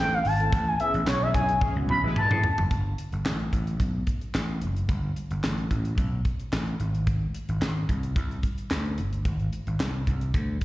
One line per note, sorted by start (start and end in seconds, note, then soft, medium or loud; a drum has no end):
0.00 0.20 A1 medium
0.00 0.15 G5 loud
0.14 0.28 F5 loud
0.25 0.48 G#1 medium
0.25 0.69 A5 loud
0.25 open hi-hat medium
0.39 0.52 A3 medium
0.39 0.52 C4 medium
0.39 0.52 E4 medium
0.39 0.53 A4 medium
0.39 closed hi-hat medium
0.53 0.75 A1 loud
0.53 kick loud
0.53 closed hi-hat loud
0.68 0.80 G#5 medium
0.79 1.02 B3 medium
0.79 1.02 C#4 medium
0.79 1.02 E4 medium
0.79 1.02 G#4 medium
0.79 0.93 E5 medium
0.79 closed hi-hat medium
0.94 1.05 A1 medium
0.94 closed hi-hat soft
1.07 1.29 B1 loud
1.07 1.24 C#5 medium
1.07 snare loud
1.07 clap medium
1.21 1.32 E3 loud
1.21 1.32 C#4 medium
1.21 1.32 G#4 loud
1.21 1.34 E5 loud
1.34 1.57 B1 loud
1.34 1.47 E3 medium
1.34 1.51 B3 medium
1.34 1.51 C#4 medium
1.34 1.47 C#4 medium
1.34 1.51 E4 medium
1.34 1.47 G#4 medium
1.34 1.52 G#4 medium
1.34 1.60 G#5 medium
1.34 kick loud
1.34 closed hi-hat medium
1.49 closed hi-hat medium
1.61 1.74 E3 medium
1.61 1.74 C#4 medium
1.61 1.74 G#4 loud
1.61 kick loud
1.61 high tom medium
1.75 1.87 C#2 loud
1.75 1.97 B3 medium
1.75 1.98 C#4 medium
1.75 1.98 E4 medium
1.75 1.98 F#4 medium
1.89 2.01 B1 loud
1.89 2.02 B5 loud
1.89 mid tom medium
2.03 2.14 A1 loud
2.03 2.38 G#3 loud
2.03 2.37 E4 loud
2.03 2.37 B4 loud
2.16 2.67 A5 loud
2.16 mid tom medium
2.30 2.41 A2 medium
2.30 2.46 B3 medium
2.30 2.46 C#4 medium
2.30 2.46 E4 medium
2.30 2.47 G#4 loud
2.30 mid tom medium
2.44 floor tom medium
2.58 2.68 F#1 medium
2.58 floor tom loud
2.71 2.93 G1 medium
2.71 kick loud
2.71 closed hi-hat medium
2.98 closed hi-hat medium
3.12 3.23 G1 medium
3.12 closed hi-hat soft
3.26 3.48 A1 medium
3.26 snare loud
3.26 clap medium
3.40 closed hi-hat soft
3.53 3.75 A1 medium
3.53 kick medium
3.53 closed hi-hat medium
3.67 closed hi-hat medium
3.80 4.02 B1 medium
3.80 kick medium
3.80 closed hi-hat medium
4.07 kick medium
4.07 closed hi-hat medium
4.21 closed hi-hat soft
4.34 4.63 A1 medium
4.34 snare loud
4.34 clap medium
4.61 4.84 F#1 medium
4.61 closed hi-hat medium
4.76 closed hi-hat medium
4.89 5.11 G1 loud
4.89 kick loud
4.89 closed hi-hat medium
5.16 closed hi-hat medium
5.31 5.41 G1 medium
5.31 closed hi-hat soft
5.43 5.66 A1 medium
5.43 snare loud
5.43 clap medium
5.58 closed hi-hat soft
5.71 5.93 A1 medium
5.71 kick medium
5.71 closed hi-hat medium
5.85 closed hi-hat soft
5.98 6.20 B1 medium
5.98 kick loud
5.98 closed hi-hat medium
6.25 kick medium
6.25 closed hi-hat medium
6.40 closed hi-hat soft
6.52 6.75 A1 loud
6.52 snare loud
6.52 clap medium
6.67 closed hi-hat soft
6.80 7.24 G#1 medium
6.80 closed hi-hat medium
6.95 closed hi-hat soft
7.07 kick loud
7.07 closed hi-hat medium
7.35 closed hi-hat medium
7.49 7.59 G#1 medium
7.49 closed hi-hat soft
7.61 7.84 G#1 medium
7.61 snare loud
7.61 clap medium
7.89 8.11 C2 loud
7.89 kick medium
7.89 closed hi-hat medium
8.03 closed hi-hat medium
8.16 8.38 C2 medium
8.16 kick loud
8.16 closed hi-hat medium
8.31 closed hi-hat soft
8.43 kick medium
8.43 closed hi-hat medium
8.58 closed hi-hat soft
8.71 9.00 D2 medium
8.71 snare loud
8.71 clap medium
8.85 closed hi-hat soft
8.98 9.20 G1 medium
8.98 closed hi-hat medium
9.13 closed hi-hat soft
9.25 9.48 G#1 loud
9.25 kick loud
9.25 closed hi-hat medium
9.40 closed hi-hat soft
9.53 closed hi-hat medium
9.67 9.77 G#1 loud
9.67 closed hi-hat soft
9.80 10.02 C2 medium
9.80 snare loud
9.80 clap medium
10.07 10.29 C2 medium
10.07 kick medium
10.07 closed hi-hat medium
10.21 closed hi-hat medium
10.34 10.57 D2 medium
10.34 kick loud
10.34 closed hi-hat medium
10.61 kick medium
10.61 closed hi-hat medium